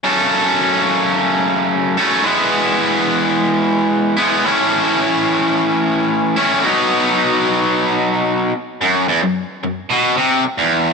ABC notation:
X:1
M:4/4
L:1/16
Q:1/4=110
K:F#dor
V:1 name="Overdriven electric guitar" clef=bass
[F,,C,F,A,CA]12- [F,,C,F,A,CA]2 [F,,C,F,A,CA]2 | [E,G,B,E]12- [E,G,B,E]2 [E,G,B,E]2 | [A,,E,A,CE]12- [A,,E,A,CE]2 [A,,E,A,CE]2 | [B,,F,B,D]12- [B,,F,B,D]2 z2 |
F,,2 E,, F,,2 z F,,2 B,,2 ^B,,2 z E,,3 |]